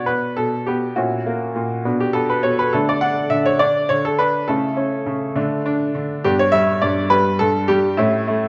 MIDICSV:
0, 0, Header, 1, 2, 480
1, 0, Start_track
1, 0, Tempo, 590551
1, 784, Time_signature, 6, 3, 24, 8
1, 3175, Tempo, 583658
1, 6936, End_track
2, 0, Start_track
2, 0, Title_t, "Grand piano"
2, 0, Program_c, 0, 0
2, 0, Control_c, 0, 64, 127
2, 0, Note_on_c, 0, 47, 39
2, 0, Note_on_c, 0, 62, 32
2, 51, Note_on_c, 0, 71, 65
2, 60, Note_on_c, 0, 59, 44
2, 66, Control_c, 0, 64, 0
2, 295, Note_off_c, 0, 47, 0
2, 297, Note_on_c, 0, 69, 67
2, 298, Note_off_c, 0, 71, 0
2, 307, Note_on_c, 0, 47, 44
2, 540, Note_off_c, 0, 59, 0
2, 541, Note_on_c, 0, 67, 59
2, 542, Note_off_c, 0, 69, 0
2, 552, Note_on_c, 0, 59, 45
2, 757, Note_off_c, 0, 62, 0
2, 773, Note_off_c, 0, 47, 0
2, 780, Note_on_c, 0, 66, 57
2, 781, Note_off_c, 0, 59, 0
2, 783, Note_off_c, 0, 67, 0
2, 784, Note_on_c, 0, 46, 48
2, 791, Note_on_c, 0, 61, 33
2, 791, Note_on_c, 0, 64, 34
2, 950, Control_c, 0, 64, 127
2, 1027, Note_on_c, 0, 58, 47
2, 1252, Note_off_c, 0, 46, 0
2, 1264, Note_on_c, 0, 46, 47
2, 1473, Note_off_c, 0, 61, 0
2, 1473, Note_off_c, 0, 64, 0
2, 1490, Note_off_c, 0, 58, 0
2, 1496, Note_off_c, 0, 46, 0
2, 1504, Note_on_c, 0, 47, 56
2, 1505, Note_on_c, 0, 59, 36
2, 1506, Note_on_c, 0, 62, 40
2, 1513, Control_c, 0, 64, 0
2, 1620, Note_off_c, 0, 66, 0
2, 1629, Note_on_c, 0, 67, 59
2, 1640, Control_c, 0, 64, 127
2, 1732, Note_off_c, 0, 59, 0
2, 1734, Note_on_c, 0, 69, 74
2, 1744, Note_on_c, 0, 59, 47
2, 1745, Note_off_c, 0, 67, 0
2, 1858, Note_off_c, 0, 69, 0
2, 1866, Note_on_c, 0, 71, 61
2, 1973, Note_off_c, 0, 47, 0
2, 1975, Note_on_c, 0, 73, 72
2, 1985, Note_off_c, 0, 71, 0
2, 1985, Note_on_c, 0, 47, 47
2, 2099, Note_off_c, 0, 73, 0
2, 2104, Note_on_c, 0, 71, 71
2, 2191, Note_off_c, 0, 62, 0
2, 2209, Note_off_c, 0, 59, 0
2, 2217, Note_off_c, 0, 47, 0
2, 2217, Note_on_c, 0, 69, 72
2, 2223, Note_off_c, 0, 71, 0
2, 2226, Note_on_c, 0, 57, 37
2, 2227, Note_on_c, 0, 50, 47
2, 2228, Note_on_c, 0, 62, 38
2, 2229, Control_c, 0, 64, 0
2, 2339, Note_off_c, 0, 69, 0
2, 2347, Note_on_c, 0, 74, 72
2, 2362, Control_c, 0, 64, 127
2, 2446, Note_off_c, 0, 62, 0
2, 2447, Note_on_c, 0, 78, 82
2, 2458, Note_on_c, 0, 62, 52
2, 2462, Note_off_c, 0, 74, 0
2, 2675, Note_off_c, 0, 50, 0
2, 2681, Note_on_c, 0, 76, 75
2, 2688, Note_on_c, 0, 50, 44
2, 2691, Note_off_c, 0, 78, 0
2, 2809, Note_off_c, 0, 76, 0
2, 2809, Note_on_c, 0, 73, 78
2, 2916, Note_off_c, 0, 62, 0
2, 2921, Note_on_c, 0, 74, 82
2, 2928, Note_on_c, 0, 62, 50
2, 2933, Note_off_c, 0, 73, 0
2, 2947, Control_c, 0, 64, 0
2, 3159, Note_off_c, 0, 50, 0
2, 3162, Note_on_c, 0, 73, 78
2, 3169, Note_off_c, 0, 74, 0
2, 3171, Note_on_c, 0, 50, 52
2, 3289, Note_off_c, 0, 73, 0
2, 3293, Note_on_c, 0, 69, 74
2, 3399, Note_off_c, 0, 62, 0
2, 3405, Note_on_c, 0, 71, 81
2, 3411, Note_on_c, 0, 62, 55
2, 3414, Note_off_c, 0, 69, 0
2, 3622, Note_off_c, 0, 57, 0
2, 3636, Note_off_c, 0, 50, 0
2, 3644, Note_off_c, 0, 62, 0
2, 3644, Note_on_c, 0, 69, 66
2, 3648, Note_off_c, 0, 71, 0
2, 3651, Note_on_c, 0, 57, 41
2, 3654, Note_on_c, 0, 49, 57
2, 3655, Note_on_c, 0, 64, 39
2, 3785, Control_c, 0, 64, 127
2, 3882, Note_on_c, 0, 61, 52
2, 4113, Note_off_c, 0, 49, 0
2, 4126, Note_on_c, 0, 49, 55
2, 4340, Note_off_c, 0, 57, 0
2, 4342, Note_off_c, 0, 64, 0
2, 4354, Note_off_c, 0, 61, 0
2, 4362, Note_off_c, 0, 49, 0
2, 4366, Note_on_c, 0, 50, 63
2, 4367, Note_on_c, 0, 57, 45
2, 4372, Note_on_c, 0, 62, 45
2, 4386, Control_c, 0, 64, 0
2, 4542, Control_c, 0, 64, 127
2, 4602, Note_off_c, 0, 62, 0
2, 4614, Note_on_c, 0, 62, 60
2, 4841, Note_off_c, 0, 50, 0
2, 4847, Note_off_c, 0, 69, 0
2, 4854, Note_on_c, 0, 50, 60
2, 5057, Note_off_c, 0, 57, 0
2, 5081, Note_off_c, 0, 62, 0
2, 5088, Note_off_c, 0, 50, 0
2, 5098, Note_on_c, 0, 67, 86
2, 5101, Control_c, 0, 64, 0
2, 5101, Note_on_c, 0, 43, 59
2, 5102, Note_on_c, 0, 62, 43
2, 5103, Note_on_c, 0, 59, 42
2, 5218, Note_off_c, 0, 67, 0
2, 5221, Note_on_c, 0, 73, 84
2, 5272, Control_c, 0, 64, 127
2, 5323, Note_on_c, 0, 76, 94
2, 5329, Note_on_c, 0, 55, 58
2, 5340, Note_off_c, 0, 73, 0
2, 5565, Note_off_c, 0, 43, 0
2, 5568, Note_on_c, 0, 74, 76
2, 5571, Note_off_c, 0, 76, 0
2, 5577, Note_on_c, 0, 43, 56
2, 5794, Note_off_c, 0, 55, 0
2, 5802, Note_on_c, 0, 71, 88
2, 5807, Note_on_c, 0, 55, 56
2, 5813, Note_off_c, 0, 74, 0
2, 5827, Control_c, 0, 64, 0
2, 6041, Note_on_c, 0, 69, 90
2, 6043, Note_off_c, 0, 43, 0
2, 6050, Note_off_c, 0, 71, 0
2, 6056, Note_on_c, 0, 43, 57
2, 6275, Note_off_c, 0, 55, 0
2, 6278, Note_on_c, 0, 67, 78
2, 6287, Note_on_c, 0, 55, 60
2, 6291, Note_off_c, 0, 69, 0
2, 6510, Note_off_c, 0, 59, 0
2, 6510, Note_off_c, 0, 62, 0
2, 6520, Note_on_c, 0, 64, 73
2, 6523, Note_off_c, 0, 43, 0
2, 6525, Note_off_c, 0, 55, 0
2, 6528, Note_off_c, 0, 67, 0
2, 6528, Note_on_c, 0, 61, 44
2, 6529, Note_on_c, 0, 45, 65
2, 6531, Note_on_c, 0, 57, 43
2, 6711, Control_c, 0, 64, 127
2, 6755, Note_off_c, 0, 57, 0
2, 6767, Note_on_c, 0, 57, 55
2, 6936, Note_off_c, 0, 45, 0
2, 6936, Note_off_c, 0, 57, 0
2, 6936, Note_off_c, 0, 61, 0
2, 6936, Note_off_c, 0, 64, 0
2, 6936, End_track
0, 0, End_of_file